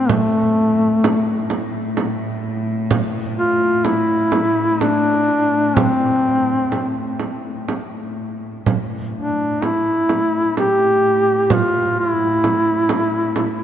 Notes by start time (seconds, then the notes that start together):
Already playing: A2 C4
0.09 A3, frame drum
1.04 frame drum
1.50 frame drum
1.97 frame drum
2.91 frame drum
3.38 F4
3.85 E4, frame drum
4.32 frame drum
4.81 D4, frame drum
5.76 C4, frame drum
6.72 frame drum
7.20 frame drum
7.69 frame drum
8.66 A2, frame drum
9.17 D4
9.62 E4, frame drum
10.09 frame drum
10.57 G4, frame drum
11.44 G4
11.50 F4, frame drum
12.00 E4
12.44 frame drum
12.89 frame drum
13.36 frame drum